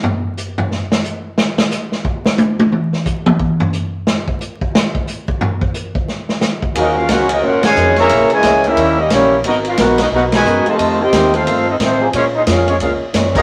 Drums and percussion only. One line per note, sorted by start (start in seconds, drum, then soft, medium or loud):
0.03 floor tom loud
0.37 hi-hat pedal medium
0.58 floor tom loud
0.71 snare soft
0.92 snare loud
1.04 hi-hat pedal medium
1.38 snare loud
1.58 snare loud
1.71 snare soft
1.71 hi-hat pedal medium
1.92 snare medium
2.05 kick medium
2.26 snare loud
2.38 hi-hat pedal medium
2.38 high tom loud
2.59 high tom loud
2.72 mid tom medium
2.93 snare soft
3.05 kick medium
3.05 hi-hat pedal medium
3.26 mid tom loud
3.40 kick medium
3.60 floor tom loud
3.73 hi-hat pedal medium
4.07 snare loud
4.28 kick medium
4.41 hi-hat pedal medium
4.61 kick medium
4.75 snare loud
4.95 kick medium
5.07 hi-hat pedal medium
5.28 kick medium
5.41 floor tom loud
5.61 kick medium
5.74 hi-hat pedal medium
5.95 kick medium
6.08 snare soft
6.29 snare medium
6.41 snare loud
6.41 hi-hat pedal medium
6.62 kick medium
6.75 ride medium
7.09 snare medium
7.09 hi-hat pedal medium
7.09 ride medium
7.29 ride medium
7.63 snare medium
7.63 ride medium
7.76 hi-hat pedal medium
7.96 snare soft
7.96 ride soft
8.09 ride medium
8.30 ride medium
8.43 snare medium
8.43 hi-hat pedal medium
8.43 ride medium
8.64 ride medium
8.77 ride medium
9.10 snare medium
9.10 hi-hat pedal medium
9.10 ride medium
9.44 ride medium
9.65 ride medium
9.77 snare medium
9.77 hi-hat pedal medium
9.77 ride loud
9.98 snare medium
9.98 ride medium
10.32 snare medium
10.32 ride medium
10.45 hi-hat pedal medium
10.66 ride medium
10.79 ride medium
11.13 snare medium
11.13 hi-hat pedal medium
11.13 ride medium
11.34 ride medium
11.47 ride medium
11.80 snare medium
11.80 hi-hat pedal soft
11.80 ride medium
12.13 ride medium
12.47 snare medium
12.47 hi-hat pedal medium
12.47 ride medium
12.68 ride medium
12.80 ride medium
13.14 snare medium
13.14 hi-hat pedal medium
13.14 ride medium
13.35 kick medium
13.35 crash medium